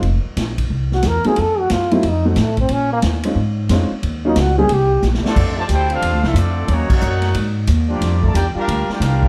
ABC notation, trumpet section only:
X:1
M:4/4
L:1/8
Q:"Swing" 1/4=180
K:Fphr
V:1 name="Trumpet section"
z8 | z8 | z8 | z6 z [CF=A=d]- |
[K:F] [CFAd] [Fcda] [EAcg] [DAcf]2 [CFAe] [CFAd]2 | [B,_E_G_d] [EBd_g]4 z2 [B,F=G=d]- | [B,FGd] [FBda] [FBdg] [DGBf]2 [FBdg] [DGBf]2 |]